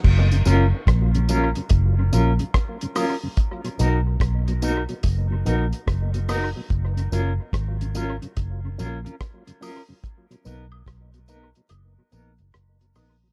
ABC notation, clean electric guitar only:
X:1
M:4/4
L:1/16
Q:"Swing 16ths" 1/4=72
K:F#
V:1 name="Clean electric guitar"
z2 [CEA] z3 [CEA] z3 [CEA] z3 [CEA] z | z2 [DFA] z3 [DFA] z3 [DFA] z3 [DFA] z | z2 [CEA] z3 [CEA] z3 [CEA] [CEA] z2 [CEA] z | z2 [B,DA] z3 [B,DA] z3 [B,DA] z3 [B,DA] z |]